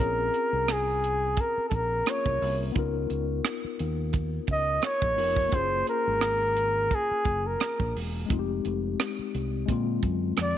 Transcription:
Already playing: C4 C#4 A#4 C#5
0.00 A#1 F4 G#4
0.34 closed hi-hat
0.53 C2
0.68 G#4, cross-stick, closed hi-hat
1.04 closed hi-hat
1.37 A#4, kick, closed hi-hat
1.57 muted fingered electric bass stroke
1.68 A#1 A4, kick, closed hi-hat
1.75 A#4
2.05 A#3 C#4 F4 A#4, cross-stick, closed hi-hat
2.10 C#5
2.26 C2, kick
2.42 C2, open hi-hat
2.72 B3 D#4, kick, closed hi-hat
2.76 C#2 F4 A#4
3.10 C#2, closed hi-hat
3.45 cross-stick, closed hi-hat
3.64 muted fingered electric bass stroke
3.79 D#2, closed hi-hat
4.13 kick, cross-stick, closed hi-hat
4.47 C#2, kick, closed hi-hat
4.52 D#5
4.82 C#5, cross-stick, closed hi-hat
5.02 A#1, kick
5.16 F1 B3 D#4 F4 A#4, open hi-hat
5.36 kick
5.49 F#1 A#3 C#4, kick, closed hi-hat
5.54 F4 G#4 C5
5.87 A#4, closed hi-hat
6.07 G#1
6.21 cross-stick, closed hi-hat
6.57 closed hi-hat
6.91 G#4, kick, closed hi-hat
7.11 muted fingered electric bass stroke
7.25 F#1, kick, closed hi-hat
7.47 A#4
7.60 cross-stick, closed hi-hat
7.80 A#1, kick
7.96 E1, open hi-hat
8.26 G#3 C4
8.30 F1 D#4 F4, kick, closed hi-hat
8.39 G4
8.65 F1, closed hi-hat
9.00 cross-stick, closed hi-hat
9.19 muted fingered electric bass stroke
9.35 C2, closed hi-hat
9.66 A#2 G#3 C4, kick, closed hi-hat
9.70 D3 F4
10.03 F#2, kick, closed hi-hat
10.37 F2, cross-stick, closed hi-hat
10.42 D5

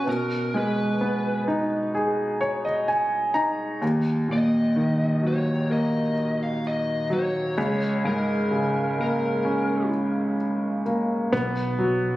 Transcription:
0.07 B2 A#4
0.54 G#3 B4
1.01 B3
1.48 D#4
1.95 G#4
2.41 C#5
2.65 D#5
2.88 G#5
3.34 D#4 A#5
3.82 D#2
4.28 A#2
4.32 D#5
4.76 D#3
5.22 F#3
5.27 C#5
5.70 A#3 D#5
6.43 F5
6.67 D#5
7.10 F#3 C#5
7.58 C#2
8.05 G#2 A#4
8.51 C#3
8.99 A#3 A#4
9.45 C#4
10.86 A#3
11.33 B1 B3
11.79 F#3

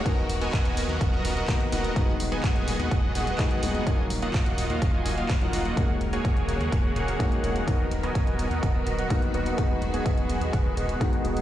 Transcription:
Already playing: F#4 A#4
0.04 D#1 D#3 F#3 B3 D#4 F#4 A#4 D#5 A#5, kick, closed hi-hat
0.30 D#1, open hi-hat
0.41 B3 F#4 A#4 D#5 G#5, closed hi-hat
0.53 D#1, kick, clap, closed hi-hat
0.65 D#1, closed hi-hat
0.77 D#1, open hi-hat
0.89 D#2 B3 F#4 A#4 D#5 F#5, closed hi-hat
1.01 D#1, kick, closed hi-hat
1.13 B3 F#4 A#4 D#5 A#5
1.25 D#1, open hi-hat
1.37 B3 F#4 A#4 D#5 F#5, closed hi-hat
1.48 D#1 D#3 A#3 B3 D#4 F#4, kick, clap, closed hi-hat
1.61 closed hi-hat
1.72 D#1 A#3 B3 D#4 F#4 A#4 D#5 F#5, open hi-hat
1.84 closed hi-hat
1.95 D#1 D#3 F#3 G#3 B3 D#4 F#4 G#4 D#5 F#5, kick, closed hi-hat
2.20 D#1, open hi-hat
2.32 B3 F#4 G#4 D#5 G#5, closed hi-hat
2.44 D#1, kick, clap, closed hi-hat
2.56 D#1, closed hi-hat
2.68 D#1, open hi-hat
2.79 D#2 B3 F#4 G#4 D#5 F#5, closed hi-hat
2.91 D#1, kick, closed hi-hat
3.15 D#1 B3 F#4 G#4 D#5 F#5, open hi-hat
3.27 closed hi-hat
3.38 D#1 D#3 G#3 B3 D#4 F#4, kick, clap, closed hi-hat
3.51 closed hi-hat
3.62 D#1 G#3 B3 D#4 F#4, open hi-hat
3.75 closed hi-hat
3.86 D#1 D#3 F#3 A#3 D#4 F4 F#4 A#4 D#5 G#5, kick, closed hi-hat
4.10 D#1, open hi-hat
4.22 A#3 F4 F#4 D#5 F#5, closed hi-hat
4.34 D#1, kick, clap, closed hi-hat
4.46 D#1, closed hi-hat
4.58 D#1, open hi-hat
4.70 D#2 A#3 F4 F#4 D#5 F5, closed hi-hat
4.82 D#1, kick, closed hi-hat
4.94 A#3 F4 F#4 D#5 G#5
5.06 D#1, open hi-hat
5.18 A#3 F4 F#4 D#5 F5, closed hi-hat
5.29 D#1, kick, clap, closed hi-hat
5.41 F#3 A#3 D#4 F4 F#4 D#5 F#5, closed hi-hat
5.53 D#1 F#3 A#3 D#4 F4, open hi-hat
5.65 A#3 F4 F#4 D#5 F#5, closed hi-hat
5.76 D#1 C#3 D#3 F#3 G#3 A#3 C#4 F#4 G#4 C#5 F#5, kick, closed hi-hat
6.01 D#1, closed hi-hat
6.13 A#3 F#4 G#4 C#5 G#5, closed hi-hat
6.25 D#1, kick, closed hi-hat
6.37 D#1, closed hi-hat
6.49 D#1, closed hi-hat
6.61 D#2 A#3 F#4 G#4 C#5 F#5, closed hi-hat
6.72 D#1, kick, closed hi-hat
6.96 D#1 A#3 F#4 G#4 C#5 F#5, closed hi-hat
7.08 closed hi-hat
7.19 D#1 D#3 G#3 A#3 C#4 F#4, kick, closed hi-hat
7.32 closed hi-hat
7.43 D#1 G#3 A#3 C#4 F#4, closed hi-hat
7.56 closed hi-hat
7.66 D#1 D#3 B3 D#4 F#4 A#4 D#5 A#5, kick, closed hi-hat
7.91 D#1, closed hi-hat
8.03 B3 F#4 A#4 D#5 G#5, closed hi-hat
8.15 D#1, kick, closed hi-hat
8.27 D#1, closed hi-hat
8.39 D#1, closed hi-hat
8.51 D#2 B3 F#4 A#4 D#5 F#5, closed hi-hat
8.63 D#1, kick, closed hi-hat
8.75 B3 F#4 A#4 D#5 A#5
8.87 D#1, closed hi-hat
8.99 B3 F#4 A#4 D#5 F#5, closed hi-hat
9.10 D#1 D#3 A#3 B3 D#4 F#4, kick, closed hi-hat
9.22 closed hi-hat
9.34 D#1 A#3 B3 D#4 F#4 A#4 D#5 F#5, closed hi-hat
9.46 closed hi-hat
9.57 D#1 D#3 G#3 B3 D#4 F#4 G#4 D#5 F#5, kick, closed hi-hat
9.82 D#1, closed hi-hat
9.94 B3 F#4 G#4 D#5 G#5, closed hi-hat
10.06 D#1, kick, closed hi-hat
10.18 D#1, closed hi-hat
10.29 D#1, closed hi-hat
10.41 D#2 B3 F#4 G#4 D#5 F#5, closed hi-hat
10.53 D#1, kick, closed hi-hat
10.77 D#1 B3 F#4 G#4 D#5 F#5, closed hi-hat
10.89 closed hi-hat
11.00 D#1 D#3 G#3 B3 D#4 F#4, kick, closed hi-hat
11.13 closed hi-hat
11.24 D#1 G#3 B3 D#4 F#4, closed hi-hat
11.37 closed hi-hat

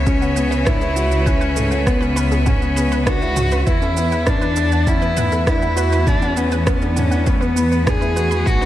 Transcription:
Already playing: C#2 C#3 C#5 E5
0.06 C#4 G#4 B4, kick, shaker
0.21 B3 F#5, shaker
0.36 B3 F#5, shaker
0.51 B4, shaker
0.65 D4 E4 B4, kick, cross-stick, mid tom, shaker
0.81 E4 G#4, shaker
0.95 F#4 F#5, shaker
1.11 F#5, shaker
1.26 C#4 E4 B4, kick, shaker
1.41 C#4 B4, shaker
1.56 A3 G#4, mid tom, shaker
1.71 F#5, shaker
1.86 B3 F#5, kick, cross-stick, shaker
2.01 C#4 B4, shaker
2.16 C#4 B4, shaker
2.32 G#4, shaker
2.46 C#4 F#5, kick, mid tom, shaker
2.61 B3 F#5, shaker
2.76 B3 B4, shaker
2.92 B4, shaker
3.06 D4 F#4 G#4, kick, cross-stick, shaker
3.21 E4 F#5, shaker
3.36 F#4 F#5, mid tom, shaker
3.51 B4, shaker
3.66 E2 E3 E4 B4, kick, shaker
3.81 C#4 A4, shaker
3.96 B3 F#5, shaker
4.12 F#5, shaker
4.26 B3 C#4 D4 B4, kick, cross-stick, mid tom, shaker
4.41 D4 B4, shaker
4.56 D4 A4, shaker
4.72 F#5, shaker
4.85 A3 C#4 E4 F#5, kick, shaker
5.02 B3 B4, shaker
5.17 B3 B4, mid tom, shaker
5.32 A4, shaker
5.46 D4 E4 F#5, kick, cross-stick, shaker
5.61 E4 F#5, shaker
5.76 F#4 B4, shaker
5.92 B4, shaker
6.06 D4 E4 A4, kick, mid tom, shaker
6.21 C#4 F#5, shaker
6.35 B3 C#4 F#5, shaker
6.52 B4, shaker
6.66 B3 C#4 B4, kick, cross-stick, shaker
6.82 D4 A4, shaker
6.96 C#4 D4 F#5, mid tom, shaker
7.11 F#5, shaker
7.26 B3 C#4 B4, kick, shaker
7.34 A3
7.41 B3 B4, shaker
7.56 B3, shaker
7.72 B4, shaker
7.86 D4 G#4, kick, cross-stick, mid tom, shaker
8.01 E4 B4, shaker
8.16 F#4 B4, shaker
8.31 B5, shaker
8.46 B1 B2 F#4 B4, kick, mid tom, shaker
8.61 D4 B4, shaker

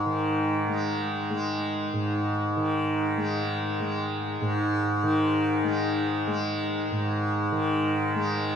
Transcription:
Already playing: G#2 G#3
0.06 D#3
0.68 G#3
1.30 G#3
1.93 G#2
2.57 D#3
3.17 G#3
3.80 G#3
4.41 G#2
5.03 D#3
5.64 G#3
6.27 G#3
6.92 G#2
7.52 D#3
8.15 G#3

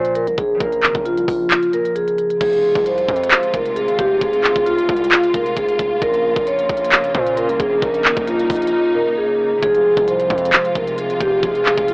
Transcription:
Already playing: A#2 C#3 F3 A#3 F4 A#4 C5
0.05 closed hi-hat
0.15 A#4, closed hi-hat
0.27 C2, closed hi-hat
0.38 A#1 G#4, kick, closed hi-hat
0.55 C#3 F3
0.60 A#1 A#3 F4 A#4, kick, closed hi-hat
0.66 A#4
0.72 closed hi-hat
0.83 G#1, clap
0.95 A#1, kick, closed hi-hat
1.05 F4, closed hi-hat
1.18 C2, closed hi-hat
1.28 A#1, kick, open hi-hat
1.51 F4, clap, closed hi-hat
1.63 closed hi-hat
1.70 C#3 F3 A#3 A#4, closed hi-hat
1.74 F4 A#4
1.85 closed hi-hat
1.96 G#4, closed hi-hat
2.08 closed hi-hat
2.18 closed hi-hat
2.30 closed hi-hat
2.41 F1 C3 G#3 F4 G#4, kick, closed hi-hat, crash
2.53 closed hi-hat
2.75 C2, kick, closed hi-hat
2.86 C5, closed hi-hat
2.98 closed hi-hat
3.08 F2, kick, closed hi-hat
3.16 closed hi-hat
3.24 closed hi-hat
3.31 clap, closed hi-hat
3.43 closed hi-hat
3.54 F1 A#4, kick, closed hi-hat
3.66 closed hi-hat
3.76 G#4, closed hi-hat
3.88 G#1, closed hi-hat
3.99 F1 G4, kick, closed hi-hat
4.21 F1 G#4, kick, closed hi-hat
4.33 closed hi-hat
4.44 clap
4.56 F1, kick, closed hi-hat
4.66 F4, closed hi-hat
4.78 closed hi-hat
4.89 C2, kick, closed hi-hat
4.96 closed hi-hat
5.04 closed hi-hat
5.11 F4, clap, closed hi-hat
5.23 closed hi-hat
5.34 F1 A#4, kick, closed hi-hat
5.46 closed hi-hat
5.56 F1 G#4, kick, closed hi-hat
5.69 closed hi-hat
5.79 F1, kick, closed hi-hat
6.02 A#1 C#3 A#3 A#4, kick, closed hi-hat
6.14 closed hi-hat
6.36 A#1, kick, closed hi-hat
6.47 C#5, closed hi-hat
6.59 closed hi-hat
6.69 A#1, kick, closed hi-hat
6.77 closed hi-hat
6.84 closed hi-hat
6.92 clap, closed hi-hat
7.04 closed hi-hat
7.14 A#2 C5, kick, closed hi-hat
7.27 closed hi-hat
7.37 A#4, closed hi-hat
7.49 C2, closed hi-hat
7.59 A#1 G#4, kick, closed hi-hat
7.82 A#1 D#4 A#4, kick, closed hi-hat
7.94 closed hi-hat
8.05 G#1, clap
8.17 A#1, kick, closed hi-hat
8.27 F4, closed hi-hat
8.39 C2, closed hi-hat
8.50 A#1, kick, closed hi-hat, open hi-hat
8.56 closed hi-hat
8.62 closed hi-hat
8.67 closed hi-hat
8.73 F4
8.95 A#4
9.17 G#4
9.57 C3 F3
9.63 F1 C3 G#3 F4 G#4, kick, closed hi-hat
9.69 G#4
9.75 closed hi-hat
9.97 C2, kick, closed hi-hat
10.08 C5, closed hi-hat
10.20 closed hi-hat
10.30 F2, kick, closed hi-hat
10.38 closed hi-hat
10.45 closed hi-hat
10.53 clap, closed hi-hat
10.65 closed hi-hat
10.75 F1 A#4, kick, closed hi-hat
10.87 closed hi-hat
10.98 G#4, closed hi-hat
11.10 G#1, closed hi-hat
11.21 F1 G4, kick, closed hi-hat
11.38 C3 F3
11.43 F1 G#3 F4 G#4, kick, closed hi-hat
11.49 G#4
11.55 closed hi-hat
11.66 clap
11.78 F1, kick, closed hi-hat
11.88 F4, closed hi-hat

